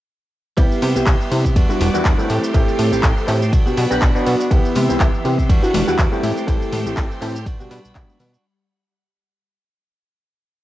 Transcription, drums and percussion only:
0.58 kick loud
0.58 ride medium
0.58 shaker medium
0.72 shaker soft
0.82 open hi-hat loud
0.96 shaker medium
1.06 kick loud
1.06 clap loud
1.06 ride medium
1.06 shaker medium
1.21 shaker soft
1.32 open hi-hat loud
1.45 kick medium
1.45 shaker medium
1.56 kick loud
1.56 ride medium
1.56 shaker medium
1.70 shaker soft
1.81 open hi-hat loud
1.95 shaker medium
2.05 kick loud
2.05 clap loud
2.05 ride medium
2.05 shaker medium
2.19 shaker soft
2.30 open hi-hat medium
2.44 shaker medium
2.54 kick loud
2.54 ride medium
2.54 shaker medium
2.68 shaker soft
2.79 open hi-hat loud
2.93 shaker medium
3.03 kick loud
3.03 clap loud
3.03 ride medium
3.03 shaker medium
3.18 shaker soft
3.28 clap soft
3.28 open hi-hat loud
3.42 shaker medium
3.53 kick loud
3.53 ride medium
3.53 shaker medium
3.67 shaker soft
3.77 open hi-hat loud
3.91 shaker medium
4.02 kick loud
4.02 clap loud
4.02 ride medium
4.02 shaker medium
4.16 shaker soft
4.27 open hi-hat loud
4.41 shaker medium
4.51 kick loud
4.51 ride medium
4.51 tambourine soft
4.51 shaker medium
4.65 tambourine soft
4.65 shaker soft
4.75 open hi-hat loud
4.75 tambourine loud
4.75 high conga medium
4.89 tambourine soft
4.89 shaker medium
5.00 kick loud
5.00 clap loud
5.00 ride medium
5.00 tambourine medium
5.00 shaker medium
5.13 tambourine soft
5.13 shaker soft
5.25 open hi-hat loud
5.25 tambourine loud
5.38 kick medium
5.38 tambourine soft
5.38 shaker medium
5.49 kick loud
5.49 ride medium
5.49 tambourine medium
5.49 shaker medium
5.63 tambourine soft
5.63 shaker soft
5.74 open hi-hat loud
5.74 tambourine medium
5.74 high conga loud
5.74 low conga loud
5.87 tambourine soft
5.87 shaker medium
5.98 kick loud
5.98 clap loud
5.98 ride medium
5.98 tambourine medium
5.98 low conga medium
5.98 shaker medium
6.12 tambourine soft
6.12 shaker soft
6.23 open hi-hat loud
6.23 tambourine loud
6.23 high conga loud
6.37 tambourine soft
6.37 shaker medium
6.48 kick loud
6.48 ride medium
6.48 tambourine medium
6.48 shaker medium
6.61 tambourine soft
6.61 shaker soft
6.72 open hi-hat loud
6.72 tambourine medium
6.72 high conga medium
6.72 low conga medium
6.86 tambourine soft
6.86 shaker medium
6.97 kick loud
6.97 clap loud
6.97 ride medium
6.97 tambourine soft
6.97 shaker medium
7.11 tambourine soft
7.11 shaker soft
7.21 clap soft
7.21 open hi-hat medium
7.21 tambourine medium
7.36 tambourine soft
7.36 shaker medium
7.46 kick loud
7.46 ride medium
7.46 tambourine medium
7.46 shaker medium
7.60 tambourine soft
7.60 shaker soft
7.71 open hi-hat loud
7.71 tambourine loud
7.85 tambourine soft
7.85 shaker medium
7.95 kick loud
7.95 clap loud
7.95 ride medium
7.95 shaker medium
8.09 tambourine soft
8.09 high conga medium
8.09 shaker soft
8.20 open hi-hat loud
8.20 tambourine medium
8.20 low conga medium
8.34 shaker medium

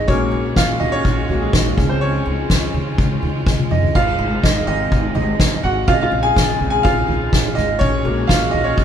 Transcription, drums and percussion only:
0.08 kick loud
0.08 ride medium
0.32 ride soft
0.56 kick loud
0.56 snare loud
0.56 ride medium
0.80 floor tom medium
0.80 ride medium
1.04 kick loud
1.04 ride medium
1.29 floor tom medium
1.29 ride medium
1.53 kick loud
1.53 snare loud
1.53 ride medium
1.65 ride soft
1.78 kick loud
1.78 snare soft
1.78 floor tom medium
1.78 ride medium
2.02 ride medium
2.26 ride medium
2.49 kick medium
2.49 snare loud
2.49 ride medium
2.73 floor tom medium
2.73 ride medium
2.98 kick loud
2.98 ride medium
3.22 floor tom medium
3.22 ride medium
3.47 kick loud
3.47 snare medium
3.59 high tom medium
3.71 mid tom medium
3.83 floor tom medium
3.95 kick loud
3.95 crash medium
4.19 ride medium
4.43 kick loud
4.43 snare loud
4.43 ride medium
4.67 ride medium
4.80 ride soft
4.92 kick loud
4.92 ride medium
5.15 floor tom medium
5.15 ride medium
5.39 kick loud
5.39 snare loud
5.39 ride medium
5.51 ride soft
5.63 floor tom medium
5.63 ride medium
5.87 kick loud
5.87 ride medium
6.12 ride medium
6.36 kick loud
6.36 snare loud
6.36 ride medium
6.60 floor tom medium
6.60 ride medium
6.85 kick loud
6.85 ride medium
7.08 floor tom medium
7.08 ride medium
7.33 kick loud
7.33 snare loud
7.33 ride medium
7.45 ride soft
7.57 snare soft
7.57 floor tom medium
7.57 ride medium
7.81 kick loud
7.81 ride medium
8.06 ride medium
8.29 kick loud
8.29 snare loud
8.29 ride medium
8.53 floor tom medium
8.53 ride medium
8.65 ride soft
8.77 kick loud
8.77 ride medium

